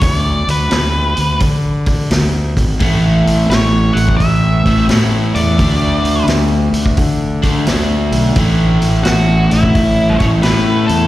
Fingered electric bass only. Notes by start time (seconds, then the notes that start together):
0.02 D2
0.48 D2
0.72 D2
1.18 D2
1.41 D3
2.10 D2
2.57 G#1
2.81 A1
3.26 A1
3.49 A1
3.95 A1
4.20 A1
4.66 A1
4.88 A2
5.35 E2
5.59 D2
6.04 D2
6.27 D2
6.73 D2
6.98 D3
7.66 D2
8.12 B1
8.36 A1
8.82 A1
9.07 A1
9.52 A1
9.75 A1
10.20 A1
10.44 A2
10.89 E2